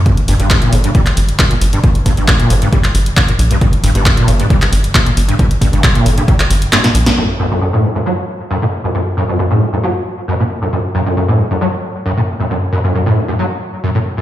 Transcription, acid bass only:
X:1
M:4/4
L:1/16
Q:1/4=135
K:Glyd
V:1 name="Acid bass" clef=bass
G,, z G,, G,, G,, _B,, G,, G,, G, z3 G,, B,, z G,, | G,, z G,, G,, G,, _B,, G,, G,, G, z3 G,, B,, z G,, | G,, z G,, G,, G,, _B,, G,, G,, G, z3 G,, B,, z G,, | G,, z G,, G,, G,, _B,, G,, G,, G, z3 G,, B,, z G,, |
F,, z F,, F,, F,, A,, F,, F,, F, z3 F,, A,, z F,, | F,, z F,, F,, F,, A,, F,, F,, F, z3 F,, A,, z F,, | F,, z F,, F,, F,, A,, F,, F,, F, z3 F,, A,, z F,, | F,, z F,, F,, F,, A,, F,, F,, F, z3 F,, A,, z F,, |]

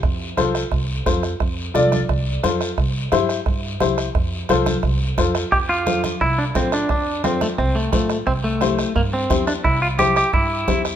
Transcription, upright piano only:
X:1
M:4/4
L:1/8
Q:1/4=175
K:F
V:1 name="Upright piano"
z2 [FAc] z3 [FAc] z | z2 [FAd] z3 [FAc] z | z2 [EGc] z3 [EGc] z | z2 [FAc] z3 [FAc] z |
z2 [FAc] z3 [FAc] z | z2 [FAc] z3 [FAc] z | z2 [EGc] z3 [EGc] z | z2 [EGc] z3 [EGc] z |]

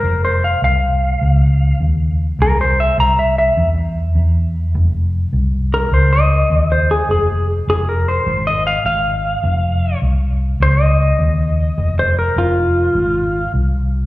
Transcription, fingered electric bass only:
X:1
M:4/4
L:1/8
Q:"Swing" 1/4=102
K:Fm
V:1 name="Fingered electric bass" clef=bass
F,,,2 C,,2 D,,2 E,,2 | C,,2 C,,2 =E,,2 E,,2 | F,,,2 C,,2 D,,2 E,,2 | F,,,2 F,,,2 A,,,2 A,,,2 |
F,,,2 C,,2 D,,2 E,,2 | F,,,2 F,,,2 A,,,2 C,,2 |]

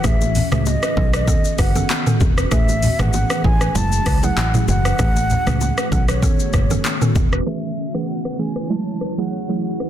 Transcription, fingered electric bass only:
X:1
M:4/4
L:1/16
Q:"Swing 16ths" 1/4=97
K:Alyd
V:1 name="Fingered electric bass" clef=bass
A,,,3 C,,2 z B,,,3 z F,,,2 z2 E,,,2 | A,,,3 G,,,2 z A,,,2 F,,,2 C,,2 A,,,2 F,,,2 | A,,,3 C,,2 z B,,,3 z F,,,2 z2 E,,,2 | z16 |]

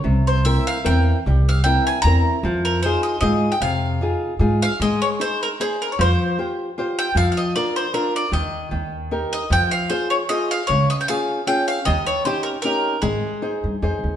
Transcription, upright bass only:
X:1
M:3/4
L:1/8
Q:"Swing" 1/4=152
K:Fm
V:1 name="Upright bass" clef=bass
C,,4 =E,,2 | C,,4 =E,,2 | F,,4 A,,2 | F,,4 A,,2 |
[K:Ab] A,, z4 z | F,, z4 z | F,, z4 z | E,, z E,,4 |
F,, z4 z | D,, z4 z | E,, z4 z | A,,, z2 G,, F,, E,, |]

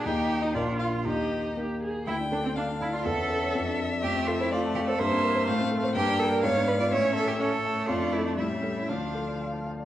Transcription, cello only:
X:1
M:2/4
L:1/16
Q:1/4=122
K:Eb
V:1 name="Cello"
G3 E D2 F2 | E4 z4 | [K:Dm] E2 D C D2 E F | A6 z2 |
G2 F E F2 G A | c6 z2 | G2 A B ^c2 =B d | ^c2 A G A4 |
F2 E D E2 ^C E | D4 z4 |]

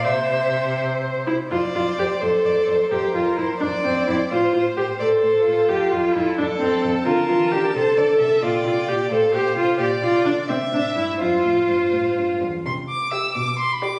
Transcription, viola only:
X:1
M:6/8
L:1/16
Q:3/8=86
K:F
V:1 name="Viola"
c8- c z E2 | F2 F2 G2 A6 | G2 F2 E2 D2 C2 E2 | F2 F2 G2 A6 |
G2 F2 E2 D2 C2 z2 | F2 F2 G2 A6 | F2 F2 G2 A2 G2 F2 | G2 F2 D2 C2 D2 E2 |
F8- F2 z2 | [K:C] z4 G2 z4 G2 |]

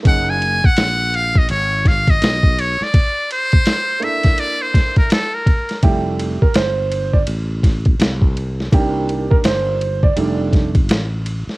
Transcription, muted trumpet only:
X:1
M:4/4
L:1/16
Q:"Swing 16ths" 1/4=83
K:F
V:1 name="Muted trumpet"
_g _a2 g3 f _e _d2 f e3 d =d- | d2 c4 e2 d c2 B A B3 | z16 | z16 |]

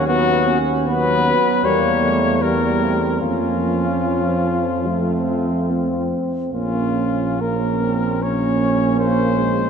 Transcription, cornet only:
X:1
M:4/4
L:1/8
Q:1/4=74
K:Bbm
V:1 name="Cornet"
^F z =B2 ^c2 _B2 | F6- F z | F2 B2 d2 c2 |]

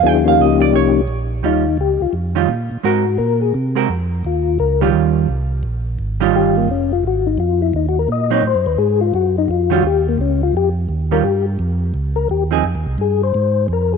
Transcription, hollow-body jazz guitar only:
X:1
M:4/4
L:1/16
Q:"Swing" 1/4=172
K:Ebmix
V:1 name="Hollow-body jazz guitar"
g2 f2 e2 =d2 _d6- d z | [E,G,DF]2 z8 [E,G,DF]2 z4 | [A,C_GB]2 z8 [A,CGB]2 z4 | z6 [E,G,DF]6 z4 |
z6 [E,G,DF]6 z4 | z12 z2 [_G,CE]2 | z12 z2 [E,G,DF]2 | z12 z2 [E,G,DF]2 |
z12 z2 [F,CEA]2 | z16 |]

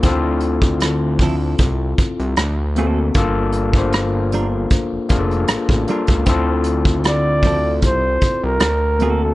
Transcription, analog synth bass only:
X:1
M:4/4
L:1/16
Q:"Swing 16ths" 1/4=77
K:Dm
V:1 name="Analog synth bass" clef=bass
D,,8 C,,2 z C,, D,,4 | G,,,8 z F,,, F,,,2 A,,, A,,, z ^C,, | D,,8 C,,2 z C,, D,,4 |]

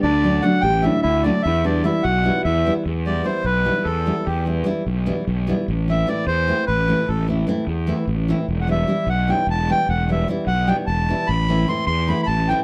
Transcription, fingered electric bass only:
X:1
M:7/8
L:1/8
Q:1/4=150
K:Em
V:1 name="Fingered electric bass" clef=bass
D,,3 A,,,2 D,,2 | E,,3 B,,,2 E,,2 | E,,3 B,,,2 E,,2 | E,,3 B,,,2 B,,,2 |
A,,,3 E,,2 A,,,2 | A,,,3 E,,2 A,,,2 | E,,,3 B,,,2 E,,,2 | E,,,3 B,,,2 E,,,2 |
A,,,3 E,,2 A,,,2 |]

